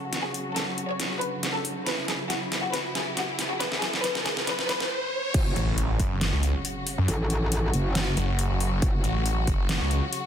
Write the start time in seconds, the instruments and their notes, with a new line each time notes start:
Already playing: string section C#3 F#3 F#4, violin section A4, riser
0.13 snare, closed hi-hat
0.24 violin section G#4
0.34 closed hi-hat
0.56 violin section A4, snare, closed hi-hat
0.78 closed hi-hat
0.89 violin section C#5
1.00 snare, closed hi-hat
1.21 violin section B4, closed hi-hat
1.43 snare, closed hi-hat
1.54 violin section A4
1.65 open hi-hat
1.87 string section E4, violin section B4, snare, closed hi-hat
2.08 violin section G#4, snare, closed hi-hat
2.30 violin section F#4, snare, closed hi-hat
2.52 snare, closed hi-hat
2.63 violin section F#4
2.74 violin section B4, snare, closed hi-hat
2.95 violin section G#4, snare, closed hi-hat
3.17 violin section F#4, snare, closed hi-hat
3.39 snare, open hi-hat
3.50 violin section F#4
3.60 violin section B4, snare, closed hi-hat
3.72 snare
3.82 violin section G#4, snare, closed hi-hat
3.94 snare
4.04 violin section B4, snare, closed hi-hat
4.15 snare
4.26 violin section G#4, snare, closed hi-hat
4.37 snare
4.47 violin section B4, snare, closed hi-hat
4.59 snare
4.69 violin section B4, snare, closed hi-hat
4.80 snare
5.34 wobble bass F#1, string section C#3 F#3 F#4, kick, closed hi-hat, crash, impact
5.56 detuned saw bass A1, closed hi-hat
5.78 closed hi-hat
6.00 detuned saw bass F#1, kick, closed hi-hat
6.21 snare, closed hi-hat
6.33 detuned saw bass C#2
6.43 closed hi-hat
6.65 closed hi-hat
6.87 open hi-hat
6.98 detuned saw bass F#2
7.08 wobble bass A1, closed hi-hat
7.30 closed hi-hat
7.52 closed hi-hat
7.74 wobble bass F#1, closed hi-hat
7.95 snare, closed hi-hat
8.17 detuned saw bass F#1, closed hi-hat
8.39 closed hi-hat
8.50 detuned saw bass F#1
8.60 open hi-hat
8.82 wobble bass F#1, kick, closed hi-hat
9.04 detuned saw bass A1, closed hi-hat
9.26 closed hi-hat
9.47 detuned saw bass F#1, kick, closed hi-hat
9.69 snare, closed hi-hat
9.81 detuned saw bass C#2
9.91 closed hi-hat
10.13 closed hi-hat